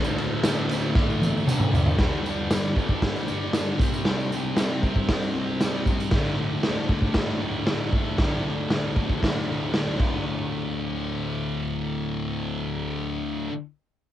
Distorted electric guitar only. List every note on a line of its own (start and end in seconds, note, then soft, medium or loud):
0.00 0.40 D2 loud
0.00 0.43 A2 loud
0.00 0.44 D3 loud
0.42 0.94 D2 medium
0.42 0.71 A2 medium
0.46 0.66 D3 medium
0.68 1.49 D3 medium
0.72 1.46 A2 medium
1.45 1.96 D2 medium
1.45 1.76 A2 medium
1.50 1.71 D3 loud
1.72 1.97 D3 medium
1.77 1.99 A2 medium
1.97 2.48 G2 loud
1.97 2.27 D3 medium
2.02 2.23 G3 loud
2.23 2.54 G3 medium
2.28 2.50 D3 medium
2.49 2.77 G2 medium
2.49 2.76 D3 medium
2.54 2.74 G3 medium
2.74 3.02 D3 medium
2.74 3.04 G3 medium
2.79 3.00 G2 medium
3.01 3.30 G2 medium
3.01 3.27 D3 medium
3.06 3.25 G3 medium
3.26 3.53 D3 medium
3.26 3.55 G3 loud
3.31 3.51 G2 medium
3.52 3.77 G2 medium
3.52 3.78 D3 medium
3.56 3.78 G3 medium
3.78 4.05 G3 medium
3.78 4.08 C4 medium
3.83 4.03 C3 medium
4.04 4.55 C3 loud
4.04 4.35 G3 loud
4.09 4.29 C4 medium
4.31 4.60 C4 medium
4.36 4.58 G3 medium
4.56 4.86 C3 medium
4.56 4.84 G3 medium
4.61 4.81 C4 medium
4.83 5.09 G3 medium
4.83 5.11 C4 loud
4.87 5.06 C3 medium
5.08 5.38 C3 medium
5.08 5.36 G3 medium
5.12 5.32 C4 medium
5.33 5.62 G3 medium
5.33 5.64 C4 loud
5.39 5.59 C3 medium
5.61 6.10 C3 medium
5.61 5.90 G3 medium
5.65 5.85 C4 medium
5.87 6.11 C4 medium
5.91 6.13 G3 medium
6.12 6.60 D2 medium
6.12 6.39 A2 loud
6.16 6.36 D3 medium
6.36 6.66 D3 medium
6.41 6.62 A2 medium
6.61 6.92 D2 medium
6.61 6.89 A2 medium
6.66 6.87 D3 medium
6.88 7.14 A2 medium
6.88 7.17 D3 medium
6.92 7.12 D2 medium
7.13 7.42 D2 medium
7.13 7.39 A2 medium
7.17 7.37 D3 medium
7.37 7.66 A2 medium
7.37 7.69 D3 medium
7.43 7.64 D2 medium
7.65 8.16 D2 medium
7.65 7.94 A2 medium
7.69 7.90 D3 medium
7.90 8.20 D3 medium
7.95 8.17 A2 medium
8.17 8.67 D2 medium
8.17 8.47 A2 loud
8.21 8.42 D3 loud
8.44 8.72 D3 medium
8.48 8.70 A2 medium
8.68 8.99 D2 medium
8.68 8.97 A2 medium
8.74 8.94 D3 medium
8.96 9.22 A2 medium
8.96 9.23 D3 medium
9.00 9.18 D2 medium
9.20 9.50 D2 medium
9.20 9.47 A2 medium
9.24 9.45 D3 medium
9.46 9.74 A2 medium
9.46 9.76 D3 medium
9.51 9.71 D2 medium
9.73 9.96 D2 medium
9.73 9.98 A2 medium
9.77 10.00 D3 medium
9.97 13.47 D2 medium
9.97 13.50 A2 medium
9.97 13.51 D3 medium